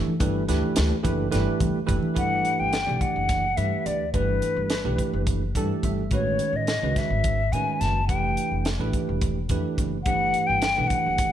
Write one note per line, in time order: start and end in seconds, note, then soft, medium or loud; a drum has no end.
0.00 0.13 E3 medium
0.00 0.13 A3 medium
0.00 0.13 D4 medium
0.00 0.13 G4 medium
0.00 0.13 A4 medium
0.07 muted upright bass stroke soft
0.07 low conga medium
0.20 0.46 G1 medium
0.20 0.43 E3 medium
0.20 0.43 A3 medium
0.20 0.44 D4 medium
0.20 0.44 G4 medium
0.20 0.44 B4 medium
0.20 kick medium
0.20 closed hi-hat medium
0.20 high conga medium
0.20 low conga soft
0.48 0.61 D2 medium
0.48 0.94 E3 medium
0.48 0.95 A3 medium
0.48 0.94 D4 medium
0.48 0.95 G4 medium
0.48 0.95 B4 medium
0.48 snare soft
0.48 closed hi-hat medium
0.48 low conga soft
0.63 low conga medium
0.76 0.90 D2 loud
0.76 snare loud
0.76 closed hi-hat medium
0.91 high conga medium
0.91 low conga soft
1.03 1.30 F#1 medium
1.03 1.27 E3 medium
1.03 1.27 A3 medium
1.03 1.27 D4 medium
1.03 1.27 G4 medium
1.03 1.27 B4 medium
1.03 kick medium
1.03 closed hi-hat medium
1.03 low conga medium
1.31 1.46 G1 medium
1.31 1.78 E3 medium
1.31 1.78 A3 medium
1.31 1.78 D4 medium
1.31 1.78 G4 medium
1.31 1.78 B4 medium
1.31 snare soft
1.31 closed hi-hat medium
1.47 low conga soft
1.60 1.73 G1 medium
1.60 kick medium
1.60 closed hi-hat medium
1.60 high conga medium
1.60 low conga medium
1.75 muted upright bass stroke soft
1.75 low conga soft
1.86 2.02 F#1 medium
1.86 2.13 E3 medium
1.86 2.13 A3 medium
1.86 2.14 D4 medium
1.86 2.14 G4 medium
1.86 2.14 B4 medium
1.86 kick medium
1.86 closed hi-hat medium
2.02 muted upright bass stroke soft
2.02 low conga medium
2.14 2.42 G1 medium
2.14 2.73 E3 medium
2.14 2.73 A3 medium
2.14 2.74 D4 medium
2.14 2.74 G4 medium
2.14 2.74 B4 medium
2.14 2.61 F#5 loud
2.14 kick medium
2.14 closed hi-hat medium
2.45 closed hi-hat soft
2.60 2.85 G1 medium
2.60 3.03 G5 medium
2.73 snare loud
2.73 closed hi-hat medium
2.87 3.00 B1 medium
2.87 3.45 E3 medium
2.87 3.45 A3 medium
2.87 3.45 D4 medium
2.87 3.45 G4 medium
2.87 3.45 D5 medium
3.01 3.59 F#5 medium
3.01 kick medium
3.01 closed hi-hat soft
3.16 3.54 F#1 medium
3.29 kick loud
3.29 snare soft
3.29 closed hi-hat medium
3.57 3.70 G2 medium
3.57 4.04 E3 medium
3.57 4.04 A3 medium
3.57 4.04 D4 medium
3.57 4.04 G4 medium
3.57 4.04 B4 medium
3.57 3.88 E5 medium
3.57 closed hi-hat medium
3.86 4.15 D2 medium
3.86 4.13 D5 medium
3.86 closed hi-hat medium
4.13 4.39 G1 medium
4.13 4.72 E3 medium
4.13 4.72 A3 medium
4.13 4.72 D4 medium
4.13 4.72 G4 medium
4.13 5.22 B4 medium
4.13 4.72 B4 medium
4.13 kick medium
4.13 closed hi-hat medium
4.42 closed hi-hat medium
4.56 4.82 G1 medium
4.70 snare medium
4.70 closed hi-hat medium
4.84 4.97 B1 medium
4.84 5.42 E3 medium
4.84 5.42 A3 medium
4.84 5.43 D4 medium
4.84 5.43 G4 medium
4.84 5.43 B4 medium
4.98 kick medium
4.98 closed hi-hat medium
5.13 5.51 F#1 medium
5.27 kick medium
5.27 closed hi-hat medium
5.55 5.68 G2 medium
5.55 6.02 E3 medium
5.55 6.02 A3 medium
5.55 6.02 D4 medium
5.55 6.02 G4 medium
5.55 6.02 A4 medium
5.55 5.82 A5 medium
5.55 kick medium
5.55 closed hi-hat medium
5.83 6.12 G1 medium
5.83 6.10 E5 medium
5.83 kick medium
5.83 closed hi-hat medium
6.11 6.37 A1 medium
6.11 6.69 D#3 medium
6.11 6.69 G#3 medium
6.11 6.70 C#4 medium
6.11 6.70 F#4 medium
6.11 6.70 B4 medium
6.11 6.58 C#5 medium
6.11 kick medium
6.11 closed hi-hat medium
6.39 closed hi-hat medium
6.53 6.79 A1 medium
6.53 6.99 D#5 medium
6.67 snare medium
6.67 closed hi-hat medium
6.82 6.95 C#2 medium
6.82 7.40 D#3 medium
6.82 7.40 G#3 medium
6.82 7.40 C#4 medium
6.82 7.40 F#4 medium
6.82 7.41 B4 medium
6.96 7.54 E5 medium
6.96 kick medium
6.96 snare soft
6.96 closed hi-hat soft
7.10 7.48 G#1 medium
7.24 kick medium
7.24 closed hi-hat medium
7.52 7.65 A2 medium
7.52 7.99 D#3 medium
7.52 7.99 G#3 medium
7.52 7.99 C#4 medium
7.52 8.00 F#4 medium
7.52 8.00 B4 medium
7.52 7.82 G#5 medium
7.52 closed hi-hat medium
7.80 8.10 F#1 medium
7.80 8.07 A5 medium
7.80 snare soft
7.80 closed hi-hat soft
8.08 8.35 F1 medium
8.08 8.66 E3 medium
8.08 8.67 A3 medium
8.08 8.67 D4 medium
8.08 8.67 G4 medium
8.08 8.67 B4 medium
8.08 8.68 G5 medium
8.08 kick medium
8.08 closed hi-hat medium
8.37 closed hi-hat soft
8.51 8.77 F1 medium
8.65 snare medium
8.65 closed hi-hat medium
8.79 8.92 A1 medium
8.79 9.37 E3 medium
8.79 9.37 A3 medium
8.79 9.37 D4 medium
8.79 9.38 G4 medium
8.79 9.38 B4 medium
8.93 kick medium
8.93 closed hi-hat medium
9.09 9.46 E1 medium
9.21 kick loud
9.21 closed hi-hat medium
9.49 9.62 F2 medium
9.49 9.96 E3 medium
9.49 9.96 A3 medium
9.49 9.97 D4 medium
9.49 9.96 G4 medium
9.49 9.96 B4 medium
9.49 kick medium
9.49 closed hi-hat medium
9.78 10.07 F#1 medium
9.78 kick medium
9.78 closed hi-hat medium
10.04 10.32 G1 medium
10.04 10.64 E3 medium
10.04 10.64 A3 medium
10.04 10.64 D4 medium
10.04 10.64 G4 medium
10.04 10.64 B4 medium
10.04 10.48 F#5 medium
10.04 kick medium
10.04 closed hi-hat medium
10.34 closed hi-hat medium
10.47 10.74 G1 medium
10.47 10.89 G5 medium
10.62 snare medium
10.62 closed hi-hat medium
10.77 10.90 B1 medium
10.77 11.32 E3 medium
10.77 11.32 A3 medium
10.77 11.32 D4 medium
10.77 11.32 G4 medium
10.77 11.32 B4 medium
10.87 11.32 F#5 medium
10.87 kick medium
10.87 closed hi-hat medium
11.06 11.32 F#1 medium
11.18 kick medium
11.18 closed hi-hat medium